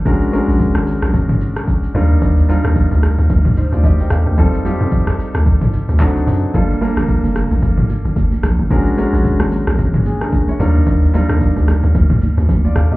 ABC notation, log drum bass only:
X:1
M:4/4
L:1/16
Q:"Swing 16ths" 1/4=111
K:Eblyd
V:1 name="Log drum bass" clef=bass
B,,,3 B,,,2 _A,,,2 B,,, A,,,3 B,,,3 E,,2 | E,,3 E,,2 D,,2 E,, D,,3 D,, D,,2 E,, D,, | F,,3 F,,2 C,,2 D,, C,,3 D,,3 ^F,,2 | G,,,3 G,,,2 F,,,2 B,,, G,,,3 G,,, G,,,2 B,,, G,,, |
B,,,3 B,,,2 _A,,,2 B,,, A,,,3 B,,,3 E,,2 | E,,3 E,,2 D,,2 E,, D,,3 D,, D,,2 E,, D,, |]